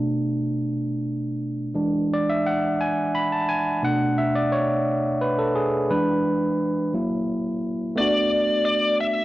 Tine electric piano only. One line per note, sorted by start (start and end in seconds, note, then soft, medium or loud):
0.00 0.67 B2 medium
0.00 0.68 A3 soft
0.00 0.68 D4 medium
1.74 2.20 E3 medium
1.74 2.21 G#3 medium
1.74 2.21 D4 medium
2.13 2.27 D5 medium
2.29 2.44 E5 medium
2.46 2.80 F#5 medium
2.81 3.15 G#5 medium
3.15 3.31 B5 medium
3.32 3.47 A5 medium
3.49 3.83 G#5 loud
3.83 5.85 B2 medium
3.83 5.85 A3 soft
3.83 5.85 D4 medium
3.83 4.19 F#5 medium
4.18 4.25 E5 medium
4.35 4.52 D5 medium
4.52 5.22 C#5 medium
5.22 5.37 B4 medium
5.39 5.46 A4 medium
5.56 5.90 G#4 medium
5.90 6.89 E3 medium
5.90 6.89 G#3 soft
5.90 6.90 D4 medium
5.90 6.89 B4 medium
6.93 7.92 F#3 medium
6.93 7.92 A#3 soft
6.93 7.93 E4 medium
7.96 9.25 A3 medium
7.96 9.25 B3 medium
8.00 9.25 D4 medium
8.00 9.25 F#4 medium